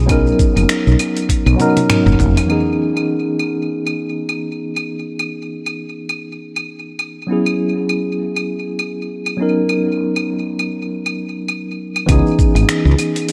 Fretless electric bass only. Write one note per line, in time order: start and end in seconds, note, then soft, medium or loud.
0.00 0.32 B1 medium
0.56 0.64 F#1 medium
0.87 0.95 B1 medium
1.46 1.54 B1 loud
2.06 2.14 F#1 medium
2.19 2.39 F#1 medium
12.09 12.20 C#2 loud
12.55 12.64 G#1 medium
12.85 12.94 C#2 medium